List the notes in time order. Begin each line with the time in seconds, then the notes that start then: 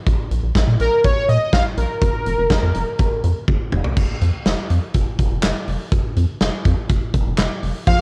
0.07 A#1, kick, closed hi-hat
0.31 A#1, closed hi-hat
0.43 A#1
0.55 A#1, kick, snare, closed hi-hat
0.67 A#2
0.80 A#1 A#4, closed hi-hat
1.04 A#1 C#5, kick, closed hi-hat
1.28 A#2 D#5, closed hi-hat
1.53 A#1 F5, kick, snare, closed hi-hat
1.77 A#1 A#4, closed hi-hat
2.02 F1, kick, closed hi-hat
2.26 F1, closed hi-hat
2.38 F1
2.50 F1, kick, snare, closed hi-hat
2.63 F2
2.75 F1, closed hi-hat
2.99 F1, kick, closed hi-hat
3.24 F2, closed hi-hat
3.48 F1, kick, high tom
3.72 F1, mid tom
3.84 floor tom
3.96 F1, kick, crash
4.21 F2, closed hi-hat
4.45 F1, snare, closed hi-hat
4.70 F2, closed hi-hat
4.94 F1, kick, closed hi-hat
5.19 F1, kick, closed hi-hat
5.31 F1
5.43 F1, snare, clap, closed hi-hat
5.68 F1, open hi-hat
5.92 F1, kick, closed hi-hat
6.16 F2, closed hi-hat
6.40 F1, snare, closed hi-hat
6.65 F2, kick, closed hi-hat
6.89 F1, kick, closed hi-hat
7.14 F1, kick, closed hi-hat
7.26 F1
7.38 F1, snare, clap, closed hi-hat
7.63 F1, open hi-hat
7.87 A#1 F3 F5, kick, crash